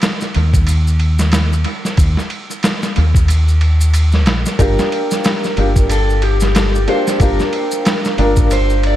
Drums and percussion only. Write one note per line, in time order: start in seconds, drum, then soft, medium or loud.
0.02 snare loud
0.02 ride medium
0.02 maracas medium
0.21 snare soft
0.21 maracas soft
0.34 ride medium
0.53 kick medium
0.53 maracas medium
0.67 ride medium
0.67 maracas medium
0.87 maracas soft
1.00 ride medium
1.19 snare medium
1.19 maracas medium
1.32 snare loud
1.32 ride medium
1.32 maracas medium
1.53 maracas soft
1.64 ride medium
1.85 snare soft
1.85 maracas medium
1.97 kick medium
1.97 ride medium
1.97 maracas medium
2.17 snare soft
2.17 maracas soft
2.30 ride medium
2.51 maracas medium
2.63 snare loud
2.63 ride medium
2.63 maracas medium
2.83 snare soft
2.83 maracas soft
2.96 ride medium
3.15 kick medium
3.15 maracas medium
3.28 ride medium
3.28 maracas medium
3.48 maracas soft
3.61 ride medium
3.81 maracas medium
3.94 ride medium
3.94 maracas medium
4.12 snare soft
4.12 maracas soft
4.26 snare loud
4.26 ride medium
4.46 snare soft
4.46 maracas medium
4.59 kick medium
4.59 ride medium
4.59 maracas medium
4.79 snare medium
4.79 maracas soft
4.92 ride medium
5.11 snare soft
5.11 maracas medium
5.24 snare loud
5.24 ride medium
5.24 maracas medium
5.44 snare soft
5.44 maracas soft
5.57 ride medium
5.76 kick medium
5.76 maracas medium
5.89 ride medium
5.89 maracas medium
6.10 maracas soft
6.22 ride medium
6.40 snare soft
6.40 maracas medium
6.55 snare loud
6.55 ride medium
6.55 maracas medium
6.75 maracas soft
6.88 ride medium
7.07 snare soft
7.07 maracas medium
7.20 kick loud
7.20 ride medium
7.20 maracas medium
7.39 snare soft
7.39 maracas soft
7.53 ride medium
7.71 maracas medium
7.85 snare loud
7.85 ride medium
7.85 maracas medium
8.05 snare soft
8.05 maracas soft
8.18 ride medium
8.36 kick medium
8.36 maracas medium
8.51 ride medium
8.51 maracas medium
8.70 maracas soft
8.83 ride medium